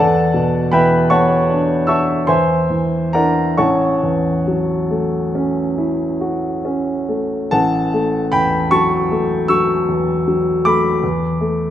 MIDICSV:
0, 0, Header, 1, 2, 480
1, 0, Start_track
1, 0, Key_signature, 3, "major"
1, 0, Tempo, 771208
1, 1428, Tempo, 870827
1, 2146, Time_signature, 9, 3, 24, 8
1, 4308, Tempo, 783290
1, 6228, Tempo, 751880
1, 6899, End_track
2, 0, Start_track
2, 0, Title_t, "Grand piano"
2, 0, Program_c, 0, 0
2, 0, Note_on_c, 0, 40, 52
2, 0, Note_on_c, 0, 69, 60
2, 0, Note_on_c, 0, 74, 58
2, 0, Note_on_c, 0, 78, 57
2, 0, Note_on_c, 0, 81, 80
2, 97, Control_c, 0, 64, 127
2, 212, Note_on_c, 0, 47, 42
2, 427, Note_off_c, 0, 69, 0
2, 427, Note_off_c, 0, 78, 0
2, 428, Note_off_c, 0, 74, 0
2, 445, Note_on_c, 0, 83, 77
2, 449, Note_off_c, 0, 81, 0
2, 452, Note_on_c, 0, 71, 59
2, 452, Note_on_c, 0, 79, 60
2, 454, Note_on_c, 0, 52, 42
2, 455, Note_on_c, 0, 76, 57
2, 593, Note_off_c, 0, 47, 0
2, 675, Note_off_c, 0, 71, 0
2, 676, Note_off_c, 0, 79, 0
2, 677, Note_off_c, 0, 76, 0
2, 684, Note_on_c, 0, 85, 81
2, 688, Note_on_c, 0, 81, 59
2, 689, Note_off_c, 0, 83, 0
2, 689, Note_on_c, 0, 73, 59
2, 690, Note_on_c, 0, 59, 42
2, 692, Note_on_c, 0, 78, 62
2, 838, Note_off_c, 0, 52, 0
2, 930, Note_on_c, 0, 62, 40
2, 1078, Note_off_c, 0, 59, 0
2, 1150, Note_off_c, 0, 73, 0
2, 1150, Note_off_c, 0, 81, 0
2, 1152, Note_off_c, 0, 78, 0
2, 1163, Note_off_c, 0, 85, 0
2, 1163, Note_on_c, 0, 88, 74
2, 1171, Note_on_c, 0, 76, 57
2, 1171, Note_on_c, 0, 81, 54
2, 1173, Note_on_c, 0, 85, 56
2, 1174, Note_on_c, 0, 66, 39
2, 1324, Note_off_c, 0, 62, 0
2, 1401, Note_off_c, 0, 40, 0
2, 1406, Note_off_c, 0, 76, 0
2, 1406, Note_off_c, 0, 81, 0
2, 1408, Note_off_c, 0, 85, 0
2, 1414, Note_on_c, 0, 84, 77
2, 1421, Note_off_c, 0, 88, 0
2, 1421, Note_on_c, 0, 80, 58
2, 1422, Note_on_c, 0, 76, 56
2, 1423, Note_on_c, 0, 72, 58
2, 1424, Note_on_c, 0, 40, 50
2, 1426, Note_off_c, 0, 66, 0
2, 1437, Control_c, 0, 64, 0
2, 1540, Control_c, 0, 64, 127
2, 1653, Note_on_c, 0, 52, 37
2, 1876, Note_off_c, 0, 80, 0
2, 1877, Note_off_c, 0, 72, 0
2, 1877, Note_off_c, 0, 76, 0
2, 1890, Note_on_c, 0, 82, 71
2, 1895, Note_off_c, 0, 84, 0
2, 1897, Note_on_c, 0, 74, 53
2, 1897, Note_on_c, 0, 78, 54
2, 1898, Note_on_c, 0, 62, 38
2, 1898, Note_on_c, 0, 70, 52
2, 1899, Note_on_c, 0, 64, 39
2, 2045, Note_off_c, 0, 52, 0
2, 2123, Note_off_c, 0, 40, 0
2, 2123, Note_off_c, 0, 62, 0
2, 2123, Note_off_c, 0, 64, 0
2, 2127, Note_off_c, 0, 70, 0
2, 2127, Note_off_c, 0, 74, 0
2, 2127, Note_off_c, 0, 78, 0
2, 2134, Note_on_c, 0, 85, 66
2, 2137, Note_on_c, 0, 73, 50
2, 2138, Note_on_c, 0, 78, 53
2, 2140, Note_off_c, 0, 82, 0
2, 2140, Note_on_c, 0, 33, 46
2, 2140, Note_on_c, 0, 81, 53
2, 2155, Control_c, 0, 64, 0
2, 2246, Control_c, 0, 64, 127
2, 2388, Note_on_c, 0, 40, 37
2, 2630, Note_on_c, 0, 54, 36
2, 2775, Note_off_c, 0, 40, 0
2, 2868, Note_on_c, 0, 57, 40
2, 3015, Note_off_c, 0, 54, 0
2, 3113, Note_on_c, 0, 61, 36
2, 3251, Note_off_c, 0, 57, 0
2, 3350, Note_on_c, 0, 64, 38
2, 3490, Note_off_c, 0, 61, 0
2, 3557, Note_off_c, 0, 73, 0
2, 3557, Note_off_c, 0, 78, 0
2, 3559, Note_off_c, 0, 81, 0
2, 3578, Note_off_c, 0, 85, 0
2, 3587, Note_on_c, 0, 66, 40
2, 3728, Note_off_c, 0, 64, 0
2, 3828, Note_on_c, 0, 61, 38
2, 3972, Note_off_c, 0, 66, 0
2, 4070, Note_on_c, 0, 57, 36
2, 4217, Note_off_c, 0, 61, 0
2, 4283, Note_off_c, 0, 33, 0
2, 4304, Note_on_c, 0, 81, 88
2, 4308, Note_off_c, 0, 57, 0
2, 4311, Note_on_c, 0, 33, 54
2, 4312, Note_on_c, 0, 78, 59
2, 4320, Control_c, 0, 64, 0
2, 4410, Control_c, 0, 64, 127
2, 4563, Note_on_c, 0, 57, 47
2, 4778, Note_off_c, 0, 78, 0
2, 4796, Note_on_c, 0, 83, 79
2, 4798, Note_off_c, 0, 81, 0
2, 4802, Note_on_c, 0, 79, 65
2, 4804, Note_on_c, 0, 40, 44
2, 4945, Note_off_c, 0, 57, 0
2, 5022, Note_off_c, 0, 79, 0
2, 5036, Note_off_c, 0, 83, 0
2, 5037, Note_on_c, 0, 85, 89
2, 5042, Note_on_c, 0, 54, 44
2, 5042, Note_on_c, 0, 81, 65
2, 5181, Note_off_c, 0, 40, 0
2, 5285, Note_on_c, 0, 57, 45
2, 5418, Note_off_c, 0, 54, 0
2, 5488, Note_off_c, 0, 81, 0
2, 5510, Note_off_c, 0, 85, 0
2, 5512, Note_on_c, 0, 88, 85
2, 5517, Note_on_c, 0, 54, 40
2, 5520, Note_on_c, 0, 85, 68
2, 5660, Note_off_c, 0, 57, 0
2, 5760, Note_on_c, 0, 40, 44
2, 5899, Note_off_c, 0, 54, 0
2, 5997, Note_on_c, 0, 54, 38
2, 6139, Note_off_c, 0, 40, 0
2, 6209, Note_off_c, 0, 85, 0
2, 6227, Note_on_c, 0, 86, 90
2, 6230, Note_off_c, 0, 88, 0
2, 6232, Note_on_c, 0, 57, 43
2, 6235, Note_on_c, 0, 83, 62
2, 6377, Note_off_c, 0, 54, 0
2, 6445, Note_off_c, 0, 33, 0
2, 6470, Note_off_c, 0, 57, 0
2, 6474, Note_on_c, 0, 40, 48
2, 6481, Control_c, 0, 64, 0
2, 6586, Control_c, 0, 64, 127
2, 6711, Note_on_c, 0, 57, 44
2, 6899, Note_off_c, 0, 40, 0
2, 6899, Note_off_c, 0, 57, 0
2, 6899, Note_off_c, 0, 83, 0
2, 6899, Note_off_c, 0, 86, 0
2, 6899, End_track
0, 0, End_of_file